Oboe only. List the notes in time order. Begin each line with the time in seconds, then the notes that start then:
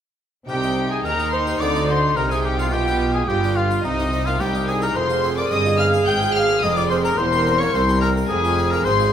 0.49 G4
0.91 G#4
1.04 A#4
1.32 C5
1.60 D5
1.88 C5
2.17 A#4
2.31 G#4
2.45 G4
2.59 F4
2.73 G4
3.14 G#4
3.28 G4
3.56 F4
3.84 D#4
4.25 F4
4.40 G4
4.69 G#4
4.82 A#4
4.96 C5
5.37 D5
5.51 D#5
5.79 F5
6.07 G5
6.35 F5
6.63 D#5
6.77 D5
6.91 C5
7.04 A#4
7.18 C5
7.60 C#5
7.73 C5
8.01 A#4
8.29 G#4
8.71 A#4
8.85 C5